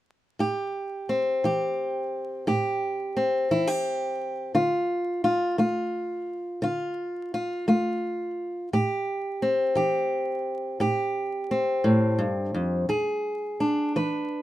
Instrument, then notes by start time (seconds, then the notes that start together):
steel-string acoustic guitar
0.39 A2 G4
1.09 C4
1.44 E3 G4
2.47 A2 G4
3.17 C4
3.51 E3 E4
3.67 G4
4.55 D3 F4
5.24 F4
5.58 A3 F4
6.62 D3 F4
7.34 F4
7.68 A3 F4
8.73 A2 G4
9.42 C4
9.76 E3 G4
10.80 A2 G4
11.51 C4
11.84 A2
12.19 G2
12.54 F2
12.89 E2 G#4
13.60 D4
13.96 E3 B4